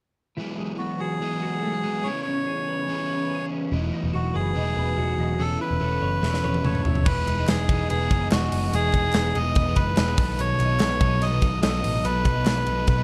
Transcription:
0.37 E3 F#3 G#3 B3 G#4 B4
0.58 G#3
0.78 B3 F#4
1.00 F#4 G#4
1.21 E3 F#3 G#3 B3 G#4 B4
1.42 F#4
1.63 A3
1.73 B3
1.83 F#3 G#3 B3 G#4 B4
2.03 C#3 E3 B3 C#4 G#4 B4 C#5
2.22 C#4 C#5
2.47 G#4
2.68 B4
2.87 C#3 E3 B3 C#4 G#4 B4
3.09 B4
3.30 G#4
3.51 C#4
3.71 E1 E3 F#3 A3 B3 D#4 D#5
3.93 D#4
4.04 E1
4.13 E1 F#4
4.34 F#1 G#4 B4
4.54 E1 E3 F#3 A3 B3 D#4 D#5
4.76 E1 B4
4.98 E1 F#4
5.19 E1 D#4
5.39 E1 C#3 E3 B3 C#4 A4 C#5
5.60 E4 B4
5.71 E1
5.80 E1 B3 C#4 A4 C#5
6.02 F#1 C#5
6.22 E1 C#3 E3 B3 C#4 E4 A4 C#5, snare
6.33 snare
6.44 E1 C#5, high tom
6.54 high tom
6.65 E1 A4 C#5, mid tom
6.75 mid tom
6.85 E1 E4, floor tom
6.95 floor tom
7.05 E1 E3 G#3 B3 D#4 G#4 B4, kick, crash
7.27 E1 D#4, clap, ride
7.38 B3 D#4 G#4
7.47 E1 B3 G#4, snare, clap, ride
7.69 E1 G#3 B3 D#4 G#4, kick, ride
7.89 E1 B3 G#4, ride
8.00 E3 G#3 B3 D#4 G#4
8.10 F#1 D#4, kick, ride
8.31 E1 G#3 B3 D#4 F#4 G#4, snare, clap, ride
8.51 F#1 D#4, open hi-hat, ride
8.72 E1 E3 G#3 B3 D#4 G#4, hi-hat pedal, ride
8.93 E1 D#4, kick, clap, ride
9.05 B3 D#4 G#4
9.12 E1 B3, snare, clap, ride
9.35 E1 G#3 B3 D#4 G#4 D#5, ride
9.55 E1 B3, kick, ride
9.66 E3 G#3 B3 D#4 G#4
9.76 F#1 D#4 B4, kick, ride
9.97 E1 G#3 B3 D#4 G#4, snare, clap, ride
10.18 B1 B2 D#3 F#3 B3 D#4 A4, kick, open hi-hat, ride
10.38 B2 C#5, hi-hat pedal, ride
10.58 B1 D#4, clap, ride
10.69 F#3 B3 D#4 A4
10.79 B1 B3, snare, clap, ride
11.00 B1 F#3 B3 D#4 A4, kick, ride
11.21 B1 B3 D#5, snare, ride
11.31 B2 D#3 F#3 B3 D#4 A4
11.41 B1 D#4, kick, ride
11.62 B1 F#3 B3 D#4 A4 D#5, snare, clap, ride
11.83 A1 D#4, open hi-hat, ride
12.04 B1 B2 F#3 B3 D#4 A4 B4, hi-hat pedal, ride
12.25 B1 D#4, kick, clap, ride
12.35 F#3 B3 D#4 A4
12.45 B1 B3, snare, clap, ride
12.66 B1 F#3 B3 D#4 A4, ride
12.87 B1 B3 B4, kick, ride
12.98 B2 D#3 F#3 B3 D#4 A4

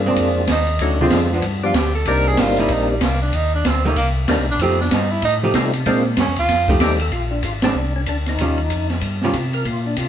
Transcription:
Already playing: G2 A#3 C4 D4 F4 G#4
0.06 G#3 C4 D4
0.16 F2, kick, ride
0.47 D#2 D#4, kick, snare, hi-hat pedal, ride
0.66 ride
0.79 D2 F#3 A3 C#4 D4 D#4 F#4, kick, ride
1.01 D3 F3 G#3 C4 D4 F4
1.10 F2, kick, snare, hi-hat pedal, ride
1.33 F3 B3 D4
1.42 G2, kick, ride
1.63 F3 G3 B3 D4 F4 G4
1.74 D2 G4, kick, snare, hi-hat pedal, ride
1.95 A4
2.05 C2 G3 A#3 C4 D4 D#4 A#4, kick, ride
2.28 G#4
2.37 G1 F4, kick, snare, hi-hat pedal, ride
2.57 G3 A#3 D#4 E4, ride
2.69 A#1, kick, ride
2.73 D#4
2.90 G3
3.01 C2 A#3, kick, snare, hi-hat pedal, ride
3.22 D4
3.33 D#2 D#4, kick, ride
3.55 D4
3.65 D2 C4, kick, snare, hi-hat pedal, ride
3.85 G3 A3 A#3 D#4
3.96 C2 A#3, kick, ride
4.28 D#2 G3 A#3 C4 D4 D#4, kick, snare, hi-hat pedal, ride
4.39 C2
4.49 A#1 D4
4.59 F2 F3 A3 C4 G4, kick, ride
4.63 D#4
4.70 snare
4.81 D4, snare
4.91 G2 D#4, kick, snare, hi-hat pedal, ride
5.12 E4
5.22 A2 D#4, kick, ride
5.43 F3 A3 D#4 G4
5.54 C3 G3 A3 C4 D#4 F4, kick, snare, hi-hat pedal, ride
5.73 ride
5.86 A#2 G#3 A#3 C4 D4 F4, kick, ride
6.17 G2 C#4, kick, snare, hi-hat pedal, ride
6.27 F2
6.36 D2 F4, ride
6.48 F2, kick, snare, ride
6.68 F3 A3 D#4 G4, kick
6.80 D#2 G3 A3 C4 D#4 G4, kick, snare, hi-hat pedal, ride
6.99 A4, ride
7.11 A#1 F4, kick, ride
7.31 D4
7.43 G#1 F4, kick, hi-hat pedal, ride
7.62 G#3 C4 D4, snare, ride
7.75 C2
7.96 C#4
8.06 D2 D4, kick, hi-hat pedal, ride
8.26 D#4, snare, ride
8.38 D#2 D#3 G3 C#4 F4, kick, ride
8.58 ride
8.70 F2, kick, hi-hat pedal, ride
8.90 snare, ride
9.01 G2, kick, ride
9.22 D#3 G3 C#4 F4, snare
9.33 C3, kick, hi-hat pedal, ride
9.53 A#4, ride
9.65 A#2 F4, kick, ride
9.86 D4
9.96 C3 F4, kick, hi-hat pedal, ride

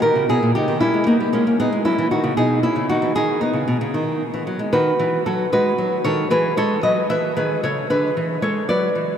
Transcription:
0.02 D#3 G4 A#4
0.15 C#3
0.29 B2 E4 G#4
0.43 A#2
0.55 C#3 D#4 G4
0.68 D#3
0.81 G3 C#4 E4
0.94 G#3
1.07 A#3 B3 D#4
1.20 G3
1.33 G#3 A#3 C#4
1.47 A#3
1.60 B3 D#4 G#4
1.72 G#3
1.85 F#3 C#4 E4
1.99 E3
2.11 D#3 D#4 F#4
2.24 C#3
2.37 B2 D#4 G#4
2.63 C#4 E4
2.76 C#3
2.89 D#3 D#4 F#4
3.02 E3
3.15 D#3 D#4 G#4
3.41 B3 D#4
3.53 C#3
3.68 B2
3.81 C#3
3.94 D#3
4.34 E3
4.47 F#3
4.59 G#3
4.73 D#3 F#4 B4
4.99 E3
5.26 F#3 F#4 A4
5.52 G#3 F#4 B4
5.78 F#3
6.04 D#3 A4 C#5
6.31 E3 G#4 B4
6.57 G#3 A4 C#5
6.83 F#3 B4 D#5
7.10 E3 B4 E5
7.36 D#3 G#4 B4
7.63 C#3 A4 C#5
7.90 D3 G#4 B4
8.17 E3
8.42 G#3 A4 C#5
8.69 F#3 B4 D5
8.95 E3

